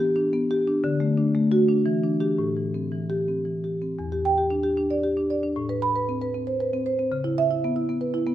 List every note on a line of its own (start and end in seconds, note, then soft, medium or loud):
0.00 0.80 E3 medium
0.00 0.26 G4 medium
0.16 0.43 D4 medium
0.33 0.60 B3 medium
0.51 0.77 G4 medium
0.67 0.84 D4 medium
0.84 1.82 D3 medium
1.00 1.27 A3 medium
1.17 1.44 D4 medium
1.35 1.62 A3 medium
1.52 1.79 F#4 medium
1.68 1.86 D4 medium
1.86 2.37 E3 medium
2.04 2.19 D4 medium
2.20 2.36 D4 medium
2.20 2.37 G4 medium
2.38 3.95 A2 medium
2.56 2.85 E3 medium
2.74 3.03 C4 medium
2.92 3.21 E3 medium
3.10 3.39 G4 medium
3.28 3.57 C4 soft
3.45 3.74 E3 soft
3.64 3.92 G4 soft
3.82 3.99 C4 soft
3.99 5.51 E2 medium
4.12 4.33 G4 medium
4.25 4.46 G5 medium
4.38 4.59 G4 medium
4.50 4.72 D4 medium
4.63 4.85 G4 medium
4.77 4.98 D4 medium
4.90 5.11 D5 medium
5.04 5.24 G4 medium
5.17 5.37 D4 medium
5.30 5.51 D5 medium
5.43 5.56 D4 medium
5.56 7.07 A2 medium
5.69 5.90 B4 medium
5.82 6.03 B5 medium
5.96 6.16 B4 medium
6.09 6.29 C4 medium
6.22 6.42 B4 medium
6.34 6.55 C4 medium
6.47 6.67 C5 medium
6.60 6.81 B4 medium
6.73 6.93 C4 medium
6.86 7.06 C5 medium
6.99 7.11 C4 medium
7.12 8.35 C#3 medium
7.24 7.45 E4 medium
7.38 7.58 E5 loud
7.51 7.70 E4 medium
7.64 7.84 B3 medium
7.76 7.96 E4 medium
7.89 8.09 B3 medium
8.01 8.21 B4 medium
8.14 8.34 E4 medium
8.27 8.35 B3 medium